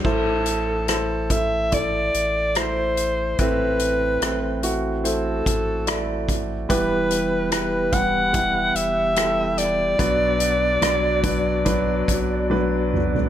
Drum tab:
CC |x---------------|----------------|----------------|----------------|
HH |--x-x-x-x-x-x-x-|x-x-x-x-x-x-x-x-|x-x-x-x-x-x-x-x-|x-x-x-x-x-x-----|
SD |----r-------r---|----r-------r---|----r-------r-r-|----r-----------|
T1 |----------------|----------------|----------------|------------o---|
T2 |----------------|----------------|----------------|--------------o-|
FT |----------------|----------------|----------------|---------------o|
BD |o-----o-o-------|o---------o---o-|o-----o-o-------|o-----o-o-o-----|